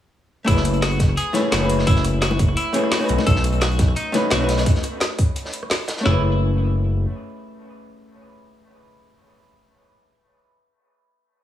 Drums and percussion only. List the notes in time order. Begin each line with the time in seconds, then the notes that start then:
0.48 kick, closed hi-hat
0.57 snare
0.65 cross-stick, closed hi-hat
0.73 closed hi-hat
0.82 snare, closed hi-hat
0.91 closed hi-hat
0.99 kick, snare, closed hi-hat
1.09 cross-stick
1.17 closed hi-hat
1.34 snare, closed hi-hat, high bongo
1.52 snare, closed hi-hat
1.70 closed hi-hat
1.79 cross-stick, snare
1.87 kick, closed hi-hat
1.96 snare
2.04 cross-stick, closed hi-hat
2.22 snare, closed hi-hat
2.31 high bongo
2.39 kick, closed hi-hat
2.49 cross-stick
2.57 closed hi-hat
2.74 closed hi-hat
2.83 cross-stick
2.92 snare, closed hi-hat, open hi-hat
3.08 cross-stick, closed hi-hat
3.18 snare, high bongo
3.27 kick, closed hi-hat
3.36 snare
3.44 cross-stick, closed hi-hat
3.52 closed hi-hat
3.61 snare, closed hi-hat
3.71 closed hi-hat
3.79 kick, snare, closed hi-hat
3.88 cross-stick
3.96 closed hi-hat
4.14 snare, closed hi-hat, high bongo
4.30 snare, closed hi-hat
4.49 snare, closed hi-hat
4.58 cross-stick, snare, closed hi-hat
4.66 kick, closed hi-hat
4.75 snare
4.83 cross-stick, closed hi-hat
5.00 snare, closed hi-hat
5.18 kick, closed hi-hat, open hi-hat
5.36 closed hi-hat
5.45 snare
5.53 closed hi-hat
5.63 cross-stick
5.70 snare, closed hi-hat, open hi-hat
5.88 cross-stick, snare, closed hi-hat
5.97 snare
6.06 snare, floor tom